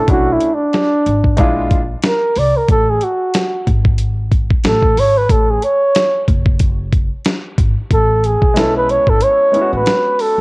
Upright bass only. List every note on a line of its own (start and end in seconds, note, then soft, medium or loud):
0.08 0.35 B1 medium
1.06 1.33 G#1 medium
1.38 1.93 A#1 loud
2.36 2.52 C2 medium
2.69 2.96 A1 medium
3.67 4.47 G#1 loud
4.64 4.92 A1 medium
4.97 5.24 G#1 medium
5.30 5.57 A1 loud
6.28 7.08 F#1 loud
7.58 7.74 G#1 medium
7.91 8.34 A1 loud
8.42 8.96 B1 medium
9.07 9.19 G#1 medium
9.73 9.84 A1 medium